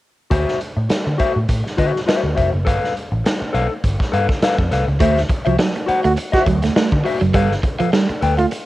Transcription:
0.30 D2 F#4 C5 E5, kick, closed hi-hat
0.48 snare
0.61 closed hi-hat
0.77 A2, muted clean electric guitar stroke
0.89 muted clean electric guitar stroke, muted picked electric bass stroke, snare, closed hi-hat
1.05 D3, muted clean electric guitar stroke
1.18 F#4 C5 E5, kick, closed hi-hat
1.35 A2, muted clean electric guitar stroke
1.49 A2, kick, closed hi-hat
1.64 muted clean electric guitar stroke, snare
1.77 D3 F#4 C5 E5, kick, closed hi-hat
1.94 muted clean electric guitar stroke, snare
2.06 F#4 C5 E5, snare, closed hi-hat
2.23 D2, muted clean electric guitar stroke
2.35 F1 F#4 C5 E5, kick, closed hi-hat
2.53 F#1
2.65 G1 A4 B4 F5, kick, closed hi-hat
2.84 snare
2.97 closed hi-hat
3.12 A1, muted clean electric guitar stroke
3.24 muted clean electric guitar stroke, snare, closed hi-hat
3.40 muted clean electric guitar stroke, muted picked electric bass stroke
3.53 B1 A4 B4 F5, closed hi-hat
3.70 muted clean electric guitar stroke
3.84 G1, kick, closed hi-hat
3.99 muted clean electric guitar stroke, kick, snare
4.12 G2 A4 B4 F5, closed hi-hat
4.29 muted clean electric guitar stroke, kick, snare
4.42 A4 B4 F5, snare, closed hi-hat
4.58 F2, muted clean electric guitar stroke, kick
4.71 C2 A4 B4 F5, snare, closed hi-hat
4.88 C#2, muted clean electric guitar stroke
5.00 D2 A3 F#4 C5 E5, kick, closed hi-hat
5.17 snare, closed hi-hat
5.29 muted clean electric guitar stroke, kick, closed hi-hat
5.45 C2 F3 F#4 C5 E5, closed hi-hat
5.59 F#3, muted clean electric guitar stroke, snare
5.75 muted clean electric guitar stroke, closed hi-hat
5.86 F#4 C5 F#5, muted picked electric bass stroke, closed hi-hat
6.03 D2 A3 F#4, muted clean electric guitar stroke, closed hi-hat
6.17 muted clean electric guitar stroke, closed hi-hat
6.32 F#4 C5 E5, kick, snare
6.46 D2 F#3, muted clean electric guitar stroke, kick, closed hi-hat
6.62 A3, muted clean electric guitar stroke, snare, closed hi-hat
6.76 A3, muted clean electric guitar stroke, snare
6.92 D3, kick
7.04 F#4 C5 E5, muted clean electric guitar stroke, open hi-hat
7.21 F#1 F#3, muted clean electric guitar stroke, closed hi-hat
7.34 G1 G3 A4 B4 F5, kick, closed hi-hat
7.51 snare
7.63 muted clean electric guitar stroke, kick, closed hi-hat
7.79 F3 A4 B4 F5, muted picked electric bass stroke, closed hi-hat
7.93 G3, snare
8.09 muted clean electric guitar stroke, muted picked electric bass stroke, closed hi-hat
8.21 D2 A4 B4 G5, closed hi-hat
8.37 A3 F4, muted clean electric guitar stroke, closed hi-hat
8.51 muted clean electric guitar stroke, closed hi-hat

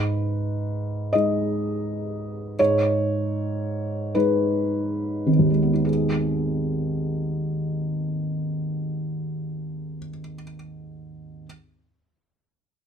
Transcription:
Already playing: G#2 B4
1.13 G#3 D#4 G#4 D#5
2.59 G#2 C#5
4.15 G#3 D#4 G#4 B4
5.27 G#1
5.39 D#2
5.50 G#3
5.63 B3
5.73 D#4
5.85 G#4

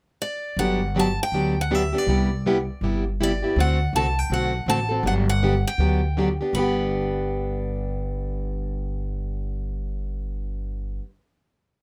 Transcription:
0.22 D5
0.57 G1 D3 F#3 B3 D4 G4 F#5
0.95 D3 F#3 B3 D4 G4
0.99 A5
1.23 G5
1.32 D2 D3 F#3 B3 D4 G4
1.61 F#5
1.71 D3 F#3 B3 D4 G4 E5
1.93 B3 D4 G4
1.98 D5
2.07 C2 C3 G3 B3 E4 G4
2.46 C3 G3 B3 E4 G4
2.81 G1 C3 G3 B3 E4 G4
3.21 C3 G3 B3 E4 G4 D5
3.42 B3 E4 G4
3.56 D2 D3 A3 C4 F#4 A4
3.60 F#5
3.93 C2 D3 A3 C4 F#4 A4 A5
4.19 G5
4.30 B1 D3 A3 C4 F#4 A4 F#5
4.66 A1 D3 A3 C4 F#4 A4 A5
4.89 C4 F#4 A4
5.03 G1 D3 F#3 B3 D4 G4
5.07 F#5
5.29 F#5
5.43 D3 F#3 B3 D4 G4
5.67 G5
5.78 D2 D3 F#3 B3 D4 G4
6.17 D3 F#3 B3 D4 G4
6.41 B3 D4 G4
6.53 G1 G2 D3 B3 B5
6.57 D4 G4

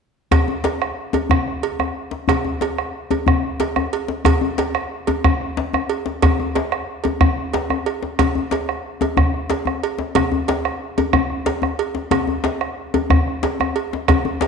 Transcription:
0.31 bombo rim, bombo low, cowbell, djembe bass
0.48 djembe tone
0.64 cowbell, djembe slap
0.82 bombo rim
1.13 cowbell, djembe slap, djembe tone
1.30 bombo rim, bombo low, djembe bass
1.48 bombo rim
1.63 cowbell
1.79 bombo rim, djembe tone
2.11 djembe slap
2.28 bombo rim, bombo low, cowbell, djembe bass
2.44 djembe tone
2.61 cowbell, djembe slap
2.78 bombo rim
3.11 cowbell, djembe slap, djembe tone
3.26 bombo rim, bombo low, djembe bass
3.43 bombo rim
3.60 cowbell, djembe slap
3.76 bombo rim, djembe tone
3.93 cowbell
4.08 djembe slap
4.25 bombo rim, bombo low, cowbell, djembe bass
4.41 djembe tone
4.58 cowbell, djembe slap
4.75 bombo rim
5.07 cowbell, djembe slap, djembe tone
5.24 bombo rim, bombo low, djembe bass
5.41 bombo rim
5.57 djembe slap
5.73 bombo rim, djembe tone
5.89 cowbell
6.06 djembe slap
6.22 bombo rim, bombo low, cowbell, djembe bass
6.40 djembe tone
6.55 bombo rim, cowbell, djembe slap
6.72 bombo rim
7.04 cowbell, djembe slap, djembe tone
7.21 bombo rim, bombo low, djembe bass
7.53 cowbell, djembe slap
7.70 bombo rim, djembe tone
7.86 bombo rim, cowbell
8.03 djembe slap
8.19 bombo rim, bombo low, cowbell, djembe bass
8.35 djembe tone
8.51 cowbell, djembe slap
8.69 bombo rim
9.01 cowbell, djembe slap, djembe tone
9.17 bombo rim, bombo low, djembe bass
9.34 bombo rim
9.50 cowbell, djembe slap
9.65 bombo rim, djembe tone
9.83 cowbell
9.98 djembe slap
10.15 bombo rim, bombo low, cowbell, djembe bass
10.32 djembe tone
10.48 cowbell, djembe slap
10.65 bombo rim
10.98 cowbell, djembe slap, djembe tone
11.13 bombo rim, bombo low, djembe bass
11.30 bombo rim
11.46 cowbell, djembe slap
11.62 bombo rim, djembe tone
11.79 cowbell
11.95 djembe slap
12.11 bombo rim, bombo low, cowbell, djembe bass
12.27 djembe tone
12.44 cowbell, djembe slap
12.61 bombo rim
12.94 cowbell, djembe slap, djembe tone
13.10 bombo rim, bombo low, djembe bass
13.28 bombo rim
13.43 cowbell, djembe slap
13.60 bombo rim, djembe tone
13.76 cowbell
13.93 djembe slap
14.08 bombo rim, bombo low, cowbell, djembe bass
14.25 bombo rim, djembe slap, djembe tone
14.41 cowbell, djembe slap

